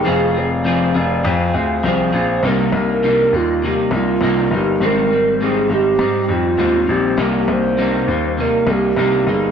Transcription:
X:1
M:4/4
L:1/16
Q:"Swing 16ths" 1/4=101
K:Cm
V:1 name="Soft synth lead"
A2 d6 c2 c2 c4 | B3 B3 F2 G2 F4 G2 | B4 A2 G4 F4 G2- | G2 c6 B2 G4 A2 |]
V:2 name="Clean electric guitar"
[F,CFA]2 [CFA]2 [F,CFA]2 [CFA]2 [F,CFA]2 [CFA]2 [F,CFA]2 [CFA]2 | [C,G,B,E]2 [G,B,E]2 [C,G,B,E]2 [G,B,E]2 [C,G,B,E]2 [G,B,E]2 [C,G,B,E]2 [G,B,E]2 | [A,,G,CE]2 [G,CE]2 [A,,G,CE]2 [G,CE]2 [A,,G,CE]2 [G,CE]2 [A,,G,CE]2 [G,CE]2 | [C,G,B,E]2 [G,B,E]2 [C,G,B,E]2 [G,B,E]2 [C,G,B,E]2 [G,B,E]2 [C,G,B,E]2 [G,B,E]2 |]
V:3 name="Grand piano" clef=bass
F,,,6 F,,,2 F,,2 D,,2 C,,2 B,,,2 | C,,2 C,,4 E,,3 z C,,2 C,,2 G,,,2 | A,,,6 A,,,2 A,,2 F,,2 E,,2 B,,,2 | C,,2 C,,4 E,,3 z C,,2 C,,2 G,,,2 |]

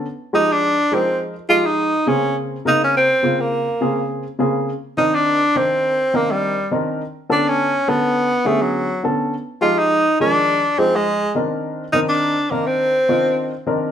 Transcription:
X:1
M:4/4
L:1/16
Q:"Swing 16ths" 1/4=104
K:Fm
V:1 name="Tenor saxophone"
z2 E =D3 C2 z2 F E3 _D2 | z2 E D C3 B,4- B, z4 | z2 E =D3 C4 B, G,3 z2 | z2 =D ^C3 =B,4 =A, ^F,3 z2 |
z2 F E3 =D4 C A,3 z2 | z2 E =D3 B, C6- C z2 |]
V:2 name="Grand piano"
z2 [F,A,EG]2 z2 [F,A,EB]2 z2 [F,A,EG]2 z2 [D,B,CA]2- | [D,B,CA]2 [D,B,CB]2 z2 [D,B,CF]2 z2 [D,B,CA]2 z2 [D,B,CA]2 | z2 [E,C=DB]2 z2 [E,CDB]2 z2 [E,CDB]2 z2 [E,CDB]2 | z2 [=D,=B,^C=A]2 z2 [D,B,CA]2 z2 [D,B,C_A]2 z2 [D,B,C=A]2 |
z2 [F,A,EG]2 z2 [E,F,A,B]2 z2 [F,A,EA]2 z2 [E,C=DB]2- | [E,C=DB]2 [E,CDB]2 z2 [E,CDB]2 z2 [E,CDF]2 z2 [E,CDB]2 |]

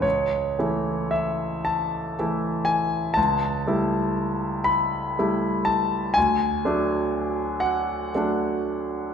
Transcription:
X:1
M:6/8
L:1/8
Q:3/8=40
K:A
V:1 name="Grand piano"
c2 e a2 g | a3 b2 a | g3 f z2 |]
V:2 name="Grand piano"
C,, [E,A,E]3 [E,A,E]2 | C,, [=G,A,E]3 [G,A,E]2 | D,, [F,A,D]3 [F,A,D]2 |]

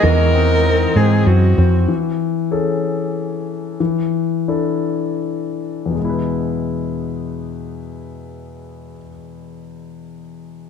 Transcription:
X:1
M:3/4
L:1/8
Q:1/4=84
K:A
V:1 name="Pedal steel guitar"
^d4- d z | z6 | z6 | z6 |
z6 |]
V:2 name="Cello"
^A3 G F2 | z6 | z6 | z6 |
z6 |]
V:3 name="String section"
[G,^B,^DF]6 | z6 | z6 | z6 |
z6 |]
V:4 name="Grand piano"
E, ^B, ^B B, B B, | E,2 [CGA]4 | E,2 [DEA]4 | [E,,B,,G,B,EB]6- |
[E,,B,,G,B,EB]6 |]
V:5 name="Fretless electric bass" clef=bass
E,,3 G,, F,, =F,, | z6 | z6 | z6 |
z6 |]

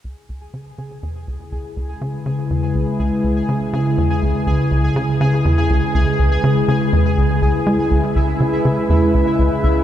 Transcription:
X:1
M:4/4
L:1/8
Q:1/4=122
K:C#m
V:1 name="Synth texture"
[Gg]8- | [Gg]8- | [Gg]8- | [Gg]8 |
[Ee]8 |]
V:2 name="Analog synth pad"
[C,G,EB]8- | [C,G,EB]8- | [C,G,EB]8- | [C,G,EB]8 |
[C,G,EB]8 |]
V:3 name="Analog synth bass" clef=bass
C,, C,, C, C, E,, C,, C,, C,, | C, C, E,, C,, C,, C,, C, C, | E,, C,, C,, C,, C, C, E,, C,, | C,, C,, C, C, E,, C,, C,, G, |
C,, C,, C, C, E,, C,, C,, C,, |]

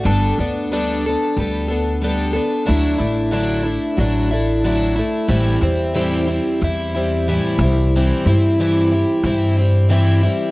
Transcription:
X:1
M:4/4
L:1/8
Q:1/4=91
K:G
V:1 name="Twelve-string acoustic guitar"
[G,B,DA] [B,DA] [G,B,DA] [B,DA] [G,B,DA] [B,DA] [G,B,DA] [B,DA] | [D,F,A,DE] [A,DE] [D,F,A,DE] [A,DE] [F,A,DE] [A,DE] [D,F,A,DE] [A,DE] | [A,,E,G,CE] [G,CE] [A,,E,G,CE] [G,CE] [E,G,CE] [G,CE] [A,,E,G,CE] [G,CE] | [C,E,G,CE] [G,CE] [C,E,G,CE] [G,CE] [E,G,CE] [G,CE] [C,E,G,CE] [G,CE] |]
V:2 name="Upright bass" clef=bass
G,,, D,,3 D,,4 | D,, A,,,3 A,,,4 | A,,, E,,3 E,,3 C,,- | C,, G,,3 G,,4 |]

